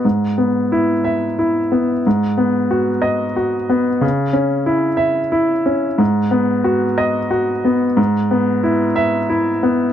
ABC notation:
X:1
M:3/4
L:1/8
Q:1/4=90
K:G#m
V:1 name="Grand piano"
z3 e2 z | z3 d2 z | z3 e2 z | z3 d2 z |
z3 e2 z |]
V:2 name="Grand piano"
G,, B, E2 E B, | G,, B, F2 F B, | C, C E2 E C | G,, B, F2 F B, |
G,, B, E2 E B, |]